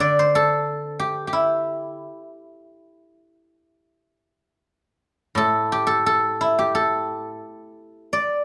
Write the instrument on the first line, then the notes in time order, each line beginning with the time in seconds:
guzheng
Already playing: D4
0.00 D3 D5
0.19 C5
0.35 A4
0.99 G4
1.27 G4
1.33 E4
5.35 A2 A4
5.72 G4
5.87 A4
6.06 A4
6.41 E4
6.59 G4
6.75 A4
8.13 D5